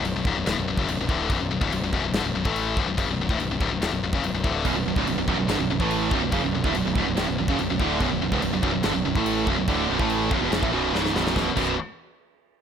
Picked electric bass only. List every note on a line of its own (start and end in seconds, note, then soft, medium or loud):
0.03 0.14 B0 medium
0.15 0.24 B0 medium
0.25 0.35 C#1 loud
0.36 0.46 B0 medium
0.47 0.56 D1 loud
0.57 0.67 B0 medium
0.68 0.77 B0 medium
0.78 0.87 F#1 loud
0.89 0.98 B0 medium
0.99 1.08 B0 medium
1.09 1.28 D1 loud
1.29 1.40 B0 medium
1.40 1.50 B0 medium
1.51 1.60 B0 medium
1.61 1.71 C#1 medium
1.72 1.81 B0 medium
1.81 1.91 B0 medium
1.93 2.02 B0 loud
2.03 2.12 B0 medium
2.13 2.23 G1 loud
2.23 2.33 B0 medium
2.34 2.44 B0 medium
2.45 2.74 A1 medium
2.76 2.86 B0 loud
2.86 2.96 B0 medium
2.98 3.07 F#1 medium
3.08 3.17 B0 medium
3.17 3.28 B0 medium
3.29 3.38 D1 loud
3.38 3.49 B0 medium
3.50 3.59 B0 medium
3.60 3.70 C#1 medium
3.70 3.80 B0 medium
3.81 3.90 D1 medium
3.91 4.01 B0 medium
4.02 4.12 B0 medium
4.13 4.21 F#1 medium
4.22 4.32 B0 medium
4.32 4.43 B0 medium
4.44 4.64 D1 loud
4.65 4.74 B0 medium
4.74 4.85 B0 medium
4.85 4.95 B0 medium
4.96 5.06 C#1 medium
5.07 5.16 B0 medium
5.17 5.27 B0 medium
5.28 5.38 B0 medium
5.38 5.48 B0 medium
5.48 5.58 G1 medium
5.59 5.69 B0 medium
5.70 5.79 B0 medium
5.80 6.10 A1 medium
6.11 6.21 B0 loud
6.22 6.32 B0 medium
6.32 6.42 F#1 loud
6.43 6.53 B0 medium
6.54 6.64 B0 medium
6.64 6.74 D1 loud
6.76 6.85 B0 medium
6.85 6.95 B0 medium
6.95 7.05 C#1 loud
7.07 7.16 B0 medium
7.17 7.27 D1 loud
7.28 7.37 B0 medium
7.39 7.48 B0 medium
7.48 7.58 F#1 loud
7.59 7.68 B0 medium
7.70 7.79 B0 medium
7.80 7.99 D1 loud
8.00 8.10 B0 medium
8.11 8.21 B0 medium
8.21 8.31 B0 medium
8.32 8.42 C#1 loud
8.42 8.52 B0 medium
8.53 8.62 B0 medium
8.63 8.73 B0 loud
8.74 8.84 B0 medium
8.84 8.94 G1 medium
8.95 9.05 B0 medium
9.06 9.15 B0 medium
9.16 9.45 A1 medium
9.47 9.57 B0 loud
9.58 9.67 B0 medium
9.68 9.88 D1 loud
9.90 9.98 B0 loud
9.99 10.29 A1 medium
10.31 10.41 B0 loud
10.41 10.51 E1 medium
10.52 10.62 F#1 medium
10.62 10.71 A1 loud
10.72 10.92 B0 medium
10.93 11.13 C#1 medium
11.14 11.34 B0 loud
11.36 11.48 B0 medium
11.57 11.77 B0 loud